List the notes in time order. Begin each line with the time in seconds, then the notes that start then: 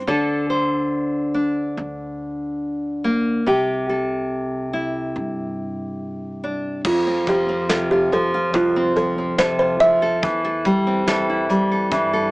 0.07 D2 D3 A4
0.50 C5
1.34 D4
1.77 D2
3.04 A#3
3.46 C2 C3 G4
3.89 A4
4.73 E4
5.16 G2
6.44 D4
6.84 F2 F4, kick, crash
7.07 C4
7.27 F3 G4, kick, closed hi-hat
7.49 C4
7.69 C3 F4 A4, snare, closed hi-hat
7.91 F4 G4
8.12 F3 A4, closed hi-hat
8.34 F4
8.53 C2 F2 F4, kick, closed hi-hat
8.76 C4
8.96 F3 A4, closed hi-hat
9.18 C4
9.38 C3 A4 C5, snare, closed hi-hat
9.59 F4 C5
9.80 F3 E5, closed hi-hat
10.02 A4
10.22 E2 E3, kick, closed hi-hat
10.45 A4
10.65 G3, kick, closed hi-hat
10.87 C4
11.07 E3 A4, snare, closed hi-hat
11.29 E4
11.49 G3, closed hi-hat
11.72 A4
11.91 G2 E3, kick, closed hi-hat
12.13 A4